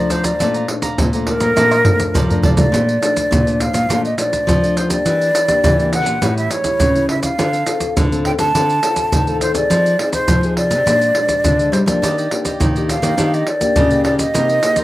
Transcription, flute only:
0.00 0.13 D5 medium
0.11 0.27 C5 medium
0.25 0.69 D5 medium
1.27 2.39 A#4 loud
2.44 2.50 D5 medium
2.58 3.62 D5 medium
3.61 4.04 F5 medium
4.05 4.18 D#5 medium
4.20 4.78 D5 medium
4.77 4.92 C5 medium
4.91 5.92 D5 loud
5.94 6.34 F#5 medium
6.38 6.53 E5 medium
6.51 7.09 C#5 medium
7.10 7.23 E5 medium
7.23 7.94 F5 medium
8.26 8.32 G5 medium
8.39 9.37 A5 loud
9.41 9.55 C5 medium
9.55 10.09 D5 medium
10.13 10.54 C5 medium
10.58 11.74 D5 loud
11.73 11.86 C5 medium
11.87 12.58 D5 medium
12.89 13.36 F5 medium
13.34 13.49 D#5 medium
13.48 14.04 D5 medium
14.05 14.18 D5 medium
14.18 14.84 D#5 medium

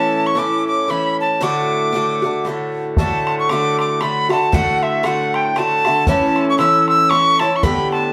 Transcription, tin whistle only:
0.00 0.28 A5 loud
0.27 0.40 C#6 medium
0.39 0.67 D6 medium
0.67 0.92 D6 medium
0.90 1.19 B5 loud
1.21 1.45 A5 medium
1.43 2.46 D6 medium
2.98 3.36 A5 medium
3.39 3.52 C#6 medium
3.50 3.79 D6 medium
3.80 4.03 D6 medium
4.01 4.31 B5 medium
4.32 4.56 A5 medium
4.55 4.84 F#5 loud
4.83 5.07 E5 medium
5.06 5.37 F#5 medium
5.36 5.60 G5 medium
5.58 6.09 A5 loud
6.10 6.47 A5 loud
6.50 6.58 C#6 medium
6.59 6.87 E6 medium
6.89 7.11 E6 loud
7.10 7.41 C#6 loud
7.40 7.58 A5 loud
7.56 7.65 C#6 medium
7.63 7.91 B5 loud
7.92 8.13 A5 medium

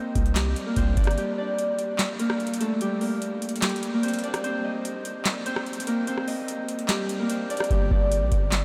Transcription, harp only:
0.00 0.67 A#3 medium
0.00 0.77 C4 medium
0.00 1.03 D#4 medium
0.00 0.66 A#4 medium
0.00 0.77 C5 medium
0.00 1.03 D#5 medium
0.36 1.17 G3 medium
0.36 1.17 G4 medium
0.66 2.20 A#3 medium
0.66 2.19 A#4 medium
0.77 3.78 C4 medium
0.77 2.75 C5 medium
0.97 1.38 D4 medium
0.97 1.38 D5 medium
1.18 2.81 G3 medium
1.18 2.81 G4 medium
1.38 4.19 D4 medium
1.38 3.23 D5 medium
2.20 2.67 A#3 medium
2.20 2.67 A#4 medium
2.61 3.07 A3 medium
2.61 3.07 A4 medium
2.81 3.62 G3 medium
2.81 3.62 G4 medium
3.01 3.94 A#3 medium
3.01 3.93 A#4 medium
3.63 4.49 G3 medium
3.63 5.98 G4 medium
3.93 5.87 A#3 medium
3.93 5.87 A#4 medium
4.03 4.44 C4 medium
4.03 4.43 C5 medium
4.23 4.70 D4 medium
4.23 4.70 D5 medium
4.44 5.47 C4 medium
4.44 5.46 C5 medium
4.64 6.28 D#4 medium
4.64 6.27 D#5 medium
5.46 6.08 C4 medium
5.46 6.07 C5 medium
5.87 7.20 A#3 medium
5.87 7.19 A#4 medium
6.08 7.30 C4 medium
6.08 7.30 C5 medium
6.28 7.56 D#4 medium
6.28 7.56 D#5 medium
6.89 7.71 G3 medium
6.89 7.71 G4 medium
7.20 8.65 A#3 medium
7.20 8.65 A#4 medium
7.30 8.65 C4 medium
7.30 8.65 C5 medium
7.50 7.92 D4 medium
7.50 7.91 D5 medium
7.71 8.65 G3 medium
7.71 8.65 G4 medium
7.91 8.65 D4 medium
7.91 8.65 D5 medium

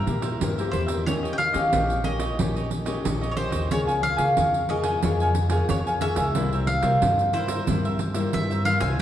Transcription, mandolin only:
0.00 0.71 A#4 medium
0.72 0.81 C5 medium
1.06 1.14 C#5 medium
1.33 1.38 G5 medium
1.38 2.07 F5 loud
2.04 2.68 D#5 medium
3.31 3.36 C#5 medium
3.37 3.71 C5 loud
3.72 3.80 C#5 loud
4.03 4.72 F5 loud
4.70 5.32 D#5 medium
5.70 5.79 C#5 medium
6.02 6.64 E5 loud
6.67 7.36 F5 loud
7.34 8.29 C5 medium
8.34 8.65 E5 medium
8.65 8.80 F5 loud
8.80 8.97 G#5 medium

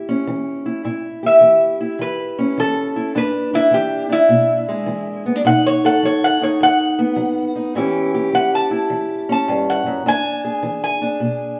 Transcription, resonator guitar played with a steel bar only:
1.26 1.99 E5 medium
2.01 2.56 B4 medium
2.60 3.14 A4 medium
3.18 3.53 B4 loud
3.55 3.73 E4 medium
3.74 4.10 G4 medium
4.12 5.23 E4 medium
5.47 5.64 F#5 loud
5.67 5.84 C#5 medium
5.86 6.03 F#5 medium
6.05 6.22 C#5 medium
6.24 6.41 F#5 loud
6.43 6.61 C#5 medium
6.63 7.73 F#5 loud
8.35 8.52 F#5 medium
8.55 9.28 A5 medium
9.32 9.67 A5 medium
9.70 10.05 F#5 medium
10.08 10.81 G#5 loud
10.84 11.60 G#5 medium

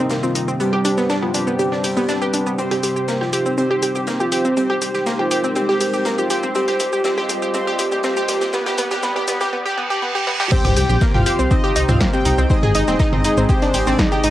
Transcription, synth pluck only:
0.10 0.19 A#3 medium
0.23 0.32 C4 medium
0.35 0.48 D#4 medium
0.48 0.53 C4 medium
0.60 0.69 B3 medium
0.73 0.84 G4 loud
0.85 0.90 D4 loud
0.98 1.09 B3 loud
1.10 1.22 D4 loud
1.23 1.31 B3 medium
1.34 1.47 D4 medium
1.47 1.52 B3 medium
1.59 1.71 G4 medium
1.72 1.77 D4 medium
1.84 1.96 G4 medium
1.97 2.08 B3 loud
2.09 2.21 D4 loud
2.22 2.33 G4 loud
2.34 2.46 D4 medium
2.47 2.52 B3 medium
2.58 2.67 C4 medium
2.71 2.82 G4 medium
2.83 2.95 G4 medium
2.96 3.01 G4 medium
3.08 3.17 A#3 medium
3.21 3.29 G4 medium
3.33 3.42 G4 medium
3.46 3.51 C4 medium
3.58 3.67 C4 medium
3.71 3.81 G4 loud
3.83 3.94 G4 medium
3.95 4.00 G4 medium
4.07 4.16 A#3 medium
4.20 4.28 G4 medium
4.32 4.41 G4 loud
4.45 4.50 C4 medium
4.57 4.66 C4 medium
4.70 4.81 G4 loud
4.82 4.93 G4 medium
4.95 5.00 G4 medium
5.06 5.15 A#3 medium
5.19 5.28 G4 medium
5.31 5.40 G4 loud
5.44 5.49 C4 medium
5.56 5.65 C4 medium
5.69 5.80 G4 loud
5.81 5.92 G4 medium
5.94 5.99 G4 medium
6.06 6.15 A#3 medium
6.18 6.27 G4 medium
6.30 6.39 G4 loud
6.43 6.48 C4 medium
6.55 6.64 C4 medium
6.68 6.79 G4 loud
6.80 6.92 G4 medium
6.93 6.98 G4 medium
7.05 7.14 C4 medium
7.18 7.28 G4 loud
7.29 7.41 G4 medium
7.42 7.47 G4 medium
7.54 7.63 C4 medium
7.67 7.78 G4 loud
7.79 7.91 G4 medium
7.92 7.97 G4 medium
8.04 8.13 C4 medium
8.17 8.28 G4 loud
8.29 8.40 G4 medium
8.42 8.47 G4 medium
8.54 8.63 B3 medium
8.66 8.76 G4 loud
8.78 8.87 B3 medium
8.91 9.01 G4 loud
9.03 9.12 B3 medium
9.16 9.26 G4 loud
9.28 9.37 B3 medium
9.41 9.51 G4 loud
9.53 9.62 B3 medium
9.66 9.76 G4 loud
9.78 9.87 B3 medium
9.90 10.00 G4 loud
10.02 10.11 B3 medium
10.15 10.25 G4 loud
10.27 10.36 B3 medium
10.40 10.50 G4 loud
10.52 10.61 C4 medium
10.52 10.61 C5 medium
10.65 10.75 G4 loud
10.65 10.75 G5 medium
10.77 10.88 G4 medium
10.77 10.88 G5 medium
10.89 10.94 G4 medium
10.89 10.94 G5 medium
11.01 11.10 A#3 medium
11.01 11.10 A#4 medium
11.14 11.23 G4 medium
11.14 11.23 G5 medium
11.26 11.35 G4 loud
11.26 11.35 G5 medium
11.39 11.44 C4 medium
11.39 11.44 C5 medium
11.51 11.60 C4 medium
11.51 11.60 C5 medium
11.64 11.75 G4 loud
11.64 11.75 G5 medium
11.76 11.81 D#4 loud
11.76 11.81 D#5 medium
11.89 12.00 C4 loud
11.89 12.00 C5 medium
12.01 12.10 A#3 medium
12.01 12.10 A#4 medium
12.13 12.22 C4 medium
12.13 12.22 C5 medium
12.25 12.38 D#4 medium
12.25 12.38 D#5 medium
12.38 12.43 C4 medium
12.38 12.43 C5 medium
12.50 12.59 C4 medium
12.50 12.59 C5 medium
12.63 12.74 G#4 loud
12.63 12.74 G#5 medium
12.75 12.80 D#4 loud
12.75 12.80 D#5 medium
12.88 12.99 C4 loud
12.88 12.99 C5 medium
13.00 13.12 D#4 loud
13.00 13.12 D#5 medium
13.13 13.21 C4 medium
13.13 13.21 C5 medium
13.25 13.37 D#4 medium
13.25 13.37 D#5 medium
13.38 13.43 C4 medium
13.38 13.43 C5 medium
13.50 13.62 G4 medium
13.50 13.62 G5 medium
13.62 13.67 D4 medium
13.62 13.67 D5 medium
13.74 13.87 G4 medium
13.74 13.86 G5 medium
13.87 13.98 C4 loud
13.87 13.98 C5 medium
13.99 14.11 D#4 loud
13.99 14.11 D#5 medium
14.12 14.23 G4 loud
14.12 14.23 G5 medium
14.24 14.30 D#4 medium
14.24 14.30 D#5 medium

